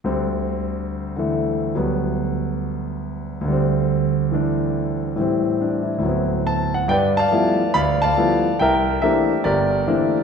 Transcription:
X:1
M:4/4
L:1/16
Q:"Swing" 1/4=140
K:Dmix
V:1 name="Grand piano"
z16 | z16 | z16 | z4 D2 E3 z3 a2 f2 |
[K:C] [Bdg]2 [dfa]6 [dfb]2 [dfa]6 | [_Beg]4 [GBe]4 [GBd]8 |]
V:2 name="Grand piano" clef=bass
[D,,D,G,C]8- [D,,D,G,C]2 [D,E,A,]6 | [D,,F,G,B,]16 | [D,,D,G,C]8 [E,A,D]8 | [A,,E,G,C]8 [D,,A,,F,B,CE]8 |
[K:C] G,,4 [F,G,A,B,E]2 z2 D,,4 [F,G,A,B,E]2 z2 | C,,4 [E,A,_B,CD]2 z2 G,,,4 [E,A,B,CD]2 z2 |]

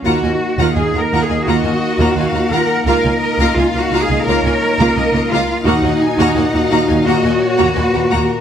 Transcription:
X:1
M:4/4
L:1/16
Q:1/4=86
K:Ebm
V:1 name="Violin section"
[gb] [ea] z [gb] [ea] [gb] [gb] [ea] [gb] [ea] z [gb] [ea] [gb] [gb] z | [fb] [ea] z [fb] [ea] [fb] [fb] [ea] [fb] [ea] z [fb] [ea] [fb] [fb] z | [gb] [ea] z [gb] [ea] [gb] [gb] [ea] [gb] [ea] z [gb] [ea] [gb] [gb] z |]
V:2 name="Violin section"
z8 e4 f2 g2 | f2 e2 f4 d4 e2 f2 | g2 a2 g2 f2 e2 d2 c2 B2 |]
V:3 name="Cello section"
G4 (3A2 B2 A2 G6 B2 | B4 (3F2 G2 A2 B6 F2 | E8 G8 |]
V:4 name="Viola section"
[B,F] [B,F] z [B,F] [B,F] [B,F] [B,F] [B,F] [B,F] [B,F] z [B,F] [B,F] [B,F] [B,F] z | [B,F] [B,F] z [B,F] [B,F] [B,F] [B,F] [B,F] [B,F] [B,F] z [B,F] [B,F] [B,F] [B,F] z | [B,G] [B,G] z [B,G] [B,G] [B,G] [B,G] [B,G] [B,G] [B,G] z [B,G] [B,G] [B,G] [B,G] z |]
V:5 name="French horn section"
[B,E]16- | [B,E]16 | [B,,G]16 |]
V:6 name="Double bass section" clef=bass
E,, E,, z E,, E,, E,, E,, E,, E,, E,, z E,, E,, E,, E,, z | D,, D,, z D,, D,, D,, D,, D,, D,, D,, z D,, D,, D,, D,, z | E,, E,, z E,, E,, E,, E,, E,, E,, E,, z E,, E,, E,, E,, z |]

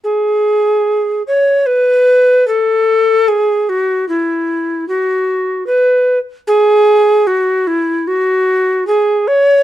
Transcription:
X:1
M:3/4
L:1/8
Q:1/4=75
K:G#phr
V:1 name="Recorder"
G3 c B2 | A2 G F E2 | F2 B z G2 | F E F2 G c |]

